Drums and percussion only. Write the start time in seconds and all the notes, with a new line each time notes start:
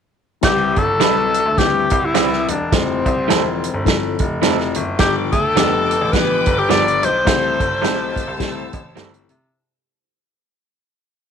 0.42 kick, snare, closed hi-hat
0.76 kick, closed hi-hat
1.01 snare, closed hi-hat
1.34 closed hi-hat
1.58 kick, snare, closed hi-hat
1.90 kick, closed hi-hat
2.15 snare, closed hi-hat
2.33 snare
2.48 closed hi-hat
2.72 kick, snare, closed hi-hat
3.06 kick, closed hi-hat
3.30 snare, closed hi-hat
3.64 closed hi-hat
3.86 kick, snare, closed hi-hat
4.19 kick, closed hi-hat
4.43 snare, closed hi-hat
4.60 snare
4.74 closed hi-hat
4.99 kick, snare, closed hi-hat
5.32 kick, closed hi-hat
5.57 snare, closed hi-hat
5.91 closed hi-hat
6.13 kick, snare, closed hi-hat
6.46 kick, closed hi-hat
6.70 snare, closed hi-hat
6.88 closed hi-hat
7.03 closed hi-hat
7.27 kick, snare, closed hi-hat
7.60 kick, closed hi-hat
7.84 snare, closed hi-hat
8.16 kick, closed hi-hat
8.40 kick, snare, closed hi-hat
8.73 kick, closed hi-hat
8.97 snare, closed hi-hat
9.14 closed hi-hat
9.29 closed hi-hat